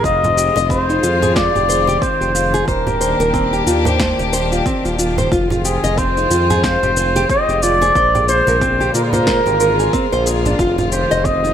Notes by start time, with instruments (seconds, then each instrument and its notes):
0.04 analog synth bass F1, string section D#3 G#3 C4 F4, nylon-string guitar F4, muted trumpet D#5, kick, shaker
0.23 nylon-string guitar F4, low conga, shaker
0.37 nylon-string guitar G4, shaker
0.56 analog synth bass F1, nylon-string guitar D#5, muted conga, shaker
0.70 nylon-string guitar C4, muted trumpet C5, kick, shaker
0.89 nylon-string guitar D#4, shaker
1.03 analog synth bass F2, nylon-string guitar F4, muted conga, shaker
1.22 nylon-string guitar G#4, low conga, shaker
1.35 nylon-string guitar F4, muted trumpet D5, kick, snare, shaker
1.55 analog synth bass F1, nylon-string guitar G4, low conga, shaker
1.69 nylon-string guitar C5, muted conga, shaker
1.88 nylon-string guitar G4, muted conga, high conga, shaker
2.01 nylon-string guitar C4, muted trumpet C5, kick, shaker
2.21 analog synth bass F1, nylon-string guitar G4, shaker
2.35 nylon-string guitar F4, shaker
2.54 nylon-string guitar G#4, muted conga, shaker
2.67 analog synth bass D#1, string section A#3 D4 G4, muted trumpet A#4, nylon-string guitar C5, kick, shaker
2.87 nylon-string guitar G4, low conga, shaker
3.01 nylon-string guitar C5, shaker
3.19 analog synth bass D#1, nylon-string guitar A#4, muted conga, shaker
3.34 nylon-string guitar C4, kick, shaker
3.53 nylon-string guitar G4, shaker
3.67 analog synth bass D#2, nylon-string guitar F4, muted conga, shaker
3.85 nylon-string guitar C5, low conga, shaker
4.00 nylon-string guitar C5, kick, snare, shaker
4.19 analog synth bass D#1, nylon-string guitar G4, muted conga, shaker
4.33 nylon-string guitar C5, shaker
4.52 nylon-string guitar F4, shaker
4.66 nylon-string guitar C4, kick, shaker
4.85 analog synth bass D#1, nylon-string guitar F4, shaker
4.99 nylon-string guitar F4, shaker
5.18 nylon-string guitar C5, low conga, shaker
5.32 analog synth bass F1, string section G#3 C4 F4, nylon-string guitar F4, kick, shaker
5.50 nylon-string guitar F4, low conga, shaker
5.65 nylon-string guitar G4, muted trumpet G#4, shaker
5.84 analog synth bass F1, nylon-string guitar D#5, muted conga, shaker
5.98 nylon-string guitar C4, muted trumpet C5, kick, shaker
6.17 nylon-string guitar D#4, shaker
6.30 analog synth bass F2, nylon-string guitar F4, muted conga, shaker
6.50 nylon-string guitar G#4, low conga, shaker
6.64 nylon-string guitar F4, muted trumpet C5, kick, snare, shaker
6.83 analog synth bass F1, nylon-string guitar G4, low conga, shaker
6.97 nylon-string guitar C5, muted conga, shaker
7.16 nylon-string guitar G4, muted conga, high conga, shaker
7.30 nylon-string guitar C4, muted trumpet D#5, kick, shaker
7.49 analog synth bass F1, nylon-string guitar G4, shaker
7.62 nylon-string guitar F4, muted trumpet D5, shaker
7.81 nylon-string guitar G#4, muted conga, shaker
7.95 analog synth bass A#1, string section D3 A#3 F4, nylon-string guitar C5, kick, shaker
8.15 nylon-string guitar G4, low conga, shaker
8.28 muted trumpet C5, nylon-string guitar C5, shaker
8.47 analog synth bass A#1, nylon-string guitar A#4, muted conga, shaker
8.61 nylon-string guitar C4, kick, shaker
8.80 nylon-string guitar G4, high conga, shaker
8.94 analog synth bass A#2, nylon-string guitar F4, muted trumpet A#4, muted conga, shaker
9.03 muted trumpet C5
9.11 muted trumpet A#4, nylon-string guitar C5, low conga, shaker
9.27 nylon-string guitar C5, kick, snare, shaker
9.46 analog synth bass G#1, nylon-string guitar G4, muted conga, shaker
9.60 nylon-string guitar A#4, shaker
9.79 nylon-string guitar G#4, shaker
9.93 nylon-string guitar C4, kick, shaker
10.12 analog synth bass A#1, nylon-string guitar C5, shaker
10.26 nylon-string guitar G#4, shaker
10.46 nylon-string guitar D4, low conga, shaker
10.59 analog synth bass F1, string section D#3 C4, nylon-string guitar F4, kick, shaker
10.78 nylon-string guitar F4, low conga, shaker
10.92 nylon-string guitar G4, muted trumpet C5, shaker
11.11 analog synth bass F1, nylon-string guitar D#5, muted conga, shaker
11.25 nylon-string guitar C4, muted trumpet D#5, kick, shaker
11.44 nylon-string guitar D#4, shaker